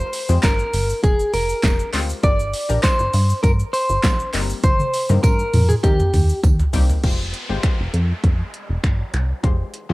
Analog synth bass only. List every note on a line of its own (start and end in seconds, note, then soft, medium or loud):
0.29 0.39 F2 loud
0.43 0.63 G1 loud
0.73 0.93 G1 medium
1.03 1.23 F1 loud
1.34 1.53 F1 medium
1.64 1.83 F1 loud
1.94 2.13 D2 medium
2.24 2.53 G1 loud
2.70 2.79 A#1 medium
3.00 3.09 G1 loud
3.14 3.33 G2 loud
3.44 3.63 G2 loud
3.90 3.99 G1 loud
4.03 4.23 A#1 loud
4.34 4.53 G1 medium
4.64 4.83 G1 loud
5.10 5.19 G2 loud
5.24 5.43 G2 loud
5.54 5.73 F2 loud
5.84 6.03 D#2 loud
6.14 6.33 D#2 medium
6.44 6.63 D#2 loud
6.74 6.93 C2 medium
7.04 7.34 F1 loud
7.49 7.59 G#1 medium
7.80 7.89 F1 loud
7.94 8.13 F2 loud
8.24 8.43 F2 loud
8.69 8.79 F1 medium
8.84 9.03 G1 loud
9.14 9.33 C2 medium
9.44 9.63 F1 loud
9.90 9.93 F2 loud